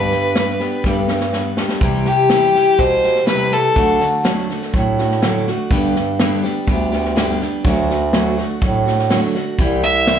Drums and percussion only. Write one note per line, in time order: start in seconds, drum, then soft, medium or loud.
0.12 snare soft
0.36 snare loud
0.36 hi-hat pedal medium
0.60 snare soft
0.84 kick medium
0.84 snare soft
1.08 snare medium
1.20 snare medium
1.33 snare medium
1.33 hi-hat pedal medium
1.57 snare medium
1.69 snare medium
1.81 kick loud
1.81 snare soft
2.05 snare soft
2.30 snare loud
2.30 hi-hat pedal medium
2.55 snare soft
2.79 kick loud
2.79 snare soft
3.04 snare soft
3.16 snare soft
3.27 snare loud
3.27 hi-hat pedal medium
3.51 snare soft
3.76 kick loud
3.76 snare soft
4.00 snare soft
4.25 snare loud
4.25 hi-hat pedal medium
4.50 snare soft
4.62 snare soft
4.74 kick medium
4.74 snare soft
4.99 snare soft
5.11 snare soft
5.22 snare loud
5.22 hi-hat pedal medium
5.47 snare soft
5.71 kick loud
5.71 snare soft
5.96 snare soft
6.20 snare loud
6.20 hi-hat pedal medium
6.44 snare soft
6.68 kick loud
6.68 snare soft
6.92 snare soft
7.05 snare soft
7.17 snare loud
7.17 hi-hat pedal medium
7.41 snare soft
7.65 kick loud
7.65 snare soft
7.90 snare soft
8.13 snare loud
8.13 hi-hat pedal medium
8.38 snare soft
8.62 kick loud
8.62 snare soft
8.87 snare soft
8.99 snare soft
9.11 snare medium
9.11 hi-hat pedal medium
9.35 snare soft
9.59 kick loud
9.59 snare soft
9.83 snare soft
10.07 snare loud
10.07 hi-hat pedal medium